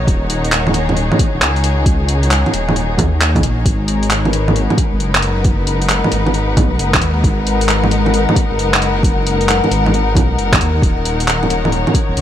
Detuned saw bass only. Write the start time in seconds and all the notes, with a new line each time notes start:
0.08 D#1
1.34 D#1
1.42 C#2
2.54 D#1
2.98 D#2
3.43 A#1
3.66 G#1
4.93 G#1
5.00 F#1
6.12 G#1
6.57 B1
6.79 F#1
7.02 D#2
7.24 G#1
8.51 G#1
8.59 F#1
9.71 G#1
10.15 B1
10.38 F#1
10.61 D#2
10.82 D#1
12.09 D#1
12.16 C#2